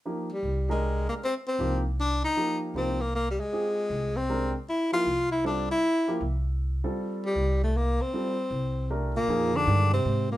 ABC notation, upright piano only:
X:1
M:3/4
L:1/8
Q:"Swing" 1/4=156
K:Fdor
V:1 name="Upright piano"
[F,B,EG] z2 [A,DGB]3 | z2 [F,B,EG] z3 | [F,B,EG]2 [F,B,EG] z3 | [CFGA]3 z [A,DGB] z |
z [F,B,=EG] z2 [G,CF=A] z | z [F,B,=EG] z3 [G,CF=A]- | [G,CF=A]2 z4 | [G,CF=A] z3 [=A,DGB] z |
[F,B,EA]2 [E,A,DG] z3 |]